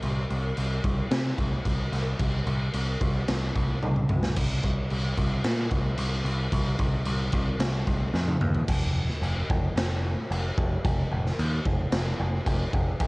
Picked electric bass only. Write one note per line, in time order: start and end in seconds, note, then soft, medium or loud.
0.03 0.24 C2 medium
0.31 0.51 C2 medium
0.58 0.78 C2 medium
0.84 1.05 C2 medium
1.11 1.32 C3 medium
1.38 1.59 C2 medium
1.66 1.86 C2 medium
1.92 2.13 C2 medium
2.20 2.41 C2 medium
2.47 2.68 C2 loud
2.74 2.95 C2 loud
3.01 3.22 C2 medium
3.29 3.50 C2 medium
3.56 3.76 C2 medium
3.84 4.04 C2 medium
4.10 4.31 C2 medium
4.37 4.59 C2 medium
4.64 4.86 C2 medium
4.91 5.13 C2 medium
5.18 5.40 C2 medium
5.45 5.67 A#2 medium
5.71 5.93 C2 loud
5.98 6.20 C2 medium
6.24 6.47 C2 loud
6.53 6.75 C2 medium
6.79 7.01 C2 loud
7.06 7.28 C2 medium
7.33 7.55 C2 loud
7.59 7.82 C2 medium
7.87 8.09 C2 medium
8.14 8.36 F2 medium
8.41 8.63 D#2 medium
8.69 9.07 F1 medium
9.22 9.41 F1 medium
9.50 9.69 F1 loud
9.76 10.14 F1 loud
10.31 10.50 F1 loud
10.58 10.77 F1 loud
10.85 11.04 F1 loud
11.12 11.31 F1 loud
11.39 11.58 D#2 loud
11.66 11.85 F1 loud
11.93 12.12 F1 medium
12.20 12.39 F1 loud
12.46 12.65 F1 medium
12.74 12.92 F1 loud
13.00 13.07 G#1 loud